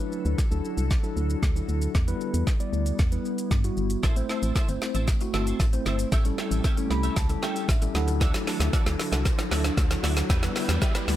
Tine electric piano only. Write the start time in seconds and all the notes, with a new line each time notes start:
0.00 F#3 D4 E4 B4
0.51 F#3 D4 E4 A4
1.03 F#3 D4 E4 A4
1.56 F#3 D4 E4 A4
2.08 G3 B3 E4 B4
2.60 G3 B3 E4 D5
3.12 G3 B3 E4 B4
3.64 G3 B3 E4 F#4
4.16 A3 C4 E4 C5
4.69 A3 C4 E4 C5
5.21 A3 C4 E4 F#4
5.73 A3 C4 E4 C5
6.25 G3 C#4 E4 A4
6.77 G3 C#4 E4 A4
6.91 B5
7.17 A5
7.29 G3 C#4 E4 A4
7.43 G5
7.69 E5
7.81 G3 C#4 E4 A4
7.95 F#3 D4 E4 A4 F#5
8.34 F#3 D4 E4 A4
8.86 F#3 D4 E4 A4
9.38 F#3 D4 E4 A4
9.90 F#3 D4 E4 A4
10.42 G3 B3 E4 B4
10.94 G3 B3 E4 B4